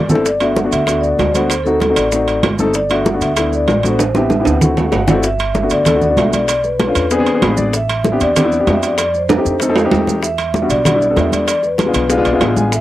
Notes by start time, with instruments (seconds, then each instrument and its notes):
Already playing: upright bass G1, grand piano D5
0.09 grand piano A3 C4 E4 A4, low conga, maracas
0.15 low bongo
0.26 vibraphone D5, high bongo, high conga, maracas
0.40 grand piano A3 B3 D4 F#4, vibraphone E5, high bongo, high conga, high timbale, maracas
0.56 vibraphone F#5, high bongo, high conga, low timbale, maracas
0.64 grand piano A3 B3 D4 F#4
0.71 upright bass D2, vibraphone E5, high bongo, high conga, high timbale, maracas
0.87 grand piano A3 B3 D4 F#4, high bongo, high conga, high timbale, maracas
1.01 vibraphone D5, high bongo, high conga, maracas
1.18 upright bass D2, high bongo, low bongo, high conga, high timbale, low timbale, maracas
1.32 grand piano A3 B3 D4 F#4, vibraphone C5, high conga, high timbale, maracas
1.50 high bongo, high conga, high timbale, maracas
1.64 grand piano A3 C4 D#4 F#4, vibraphone A4, high bongo, high conga, maracas
1.80 high bongo, high conga, high timbale, low timbale, maracas
1.89 grand piano A3 C4 D#4 F#4
1.94 upright bass A1, vibraphone D5, high bongo, high timbale, maracas
2.12 grand piano A3 C4 D#4 F#4, high bongo, high conga, maracas
2.28 high bongo, high conga, high timbale, maracas
2.43 upright bass G1, high bongo, low bongo, high conga, high timbale, low timbale, maracas
2.59 grand piano A3 C4 D#4 A4, high conga, maracas
2.74 vibraphone D5, high bongo, high conga, maracas
2.89 grand piano A3 B3 D4 F#4, vibraphone E5, high bongo, high conga, high timbale, maracas
3.06 vibraphone F#5, high bongo, high conga, low timbale, maracas
3.13 grand piano A3 B3 D4 F#4
3.21 upright bass D2, vibraphone E5, high bongo, high conga, high timbale, maracas
3.36 grand piano A3 B3 D4 E4, high bongo, high conga, high timbale, maracas
3.53 vibraphone D5, high bongo, high conga, maracas
3.68 upright bass A1, high bongo, low bongo, high conga, high timbale, low timbale, maracas
3.83 grand piano A3 B3 D4 F#4, vibraphone C5, high conga, high timbale, maracas
3.99 high bongo, high conga, high timbale, maracas
4.15 grand piano B3 C4 E4 G4, vibraphone E5, high bongo, high conga, high timbale, maracas
4.30 high bongo, high conga, high timbale, maracas
4.39 grand piano B3 C4 E4 G4
4.45 upright bass D2, vibraphone F#5, high bongo, high timbale, maracas
4.61 grand piano A3 C4 E4 F#4, high bongo, low conga, maracas
4.77 high bongo, low conga, low timbale, maracas
4.92 upright bass G1, grand piano F#5, high bongo, low timbale, maracas
5.08 grand piano A3 C4 E4 F#4 D5, low bongo, low conga, low timbale, maracas
5.23 vibraphone E5, high bongo, high conga, maracas
5.39 high bongo, high conga, high timbale, maracas
5.55 high bongo, high conga, low timbale, maracas
5.62 grand piano A3 B3 D4 F#4
5.70 upright bass D2, vibraphone D5, high bongo, high conga, high timbale, maracas
5.85 grand piano A3 B3 D4 A4, high bongo, high conga, low conga, high timbale, maracas
5.94 grand piano A3 B3 D4 F#4
6.01 vibraphone D5, high bongo, high conga, low conga, maracas
6.09 grand piano A3 B3 D4 F#4
6.17 upright bass B1, vibraphone E5, high bongo, low bongo, high conga, high timbale, low timbale, maracas
6.33 vibraphone D5, high conga, high timbale, maracas
6.48 vibraphone D5, high bongo, high conga, high timbale, maracas
6.64 vibraphone B4, high bongo, high conga, maracas
6.79 vibraphone B4, high bongo, high conga, high timbale, low timbale, maracas
6.87 grand piano A3 C#4 D4 F4
6.95 upright bass E2, high bongo, high timbale, maracas
7.11 grand piano B3 C4 D4 G#4, high bongo, high conga, maracas
7.18 grand piano B3 C4 D4 G#4
7.26 high bongo, high conga, high timbale, maracas
7.34 grand piano B3 C4 D4 G#4
7.42 upright bass A1, grand piano B5, high bongo, low bongo, high conga, high timbale, low timbale, maracas
7.57 grand piano D5, high conga, maracas
7.73 vibraphone E5, high bongo, high conga, maracas
7.89 high bongo, high conga, high timbale, maracas
8.04 high bongo, high conga, low timbale, maracas
8.12 grand piano B3 C4 D4 G4
8.20 upright bass E2, vibraphone D5, high bongo, high conga, high timbale, maracas
8.36 grand piano B3 C4 D4 G4, high bongo, high conga, low conga, high timbale, maracas
8.43 grand piano B3 C4 D4 E4
8.52 vibraphone D5, high bongo, high conga, maracas
8.59 grand piano B3 C4 D4 G4
8.67 upright bass F2, vibraphone E5, high bongo, low bongo, high conga, high timbale, low timbale, maracas
8.83 vibraphone D5, high timbale, maracas
8.98 high bongo, high conga, high timbale, maracas
9.03 vibraphone D5
9.14 vibraphone C5, high bongo, high conga, maracas
9.29 vibraphone C5, high bongo, high conga, high timbale, maracas
9.37 grand piano A3 C4 D#4 G4
9.45 upright bass F2, high bongo, maracas
9.60 grand piano A3 C4 D#4 A4, high bongo, high conga, maracas
9.68 grand piano A3 C4 D#4 A4
9.76 high bongo, high conga, low timbale, maracas
9.85 grand piano A3 C4 D#4 G4
9.91 upright bass E2, high bongo, low bongo, high conga, low timbale, maracas
10.07 high conga, low timbale, maracas
10.23 vibraphone E5, high bongo, high conga, maracas
10.38 high bongo, high conga, high timbale, maracas
10.54 high bongo, high conga, low timbale, maracas
10.62 grand piano G3 B3 D4 F#4
10.70 upright bass B1, vibraphone D5, high bongo, high conga, high timbale, maracas
10.85 grand piano G3 B3 D4 F#4, high bongo, high conga, low conga, high timbale, maracas
10.94 grand piano G3 B3 D4 E4
11.01 vibraphone D5, high bongo, high conga, maracas
11.10 grand piano G3 B3 D4 A4
11.16 upright bass E2, vibraphone E5, high bongo, low bongo, high conga, high timbale, low timbale, maracas
11.32 vibraphone D5, high conga, high timbale, maracas
11.48 vibraphone D5, high bongo, high conga, high timbale, maracas
11.63 vibraphone B4, high bongo, high conga, maracas
11.78 vibraphone B4, high bongo, high conga, high timbale, low timbale, maracas
11.86 grand piano G#3 B3 D4 F4
11.94 upright bass B1, high bongo, high timbale, maracas
12.09 grand piano G#3 B3 D4 F4, high bongo, high conga, maracas
12.17 grand piano G#3 B3 D4 F4
12.25 upright bass B1, grand piano D5, high bongo, high conga, high timbale, maracas
12.33 grand piano G#3 B3 D4 F4 E5
12.40 upright bass A1, grand piano E5, high bongo, low bongo, high conga, high timbale, low timbale, maracas
12.56 grand piano G#5, high conga, maracas
12.72 vibraphone E5, high bongo, high conga, maracas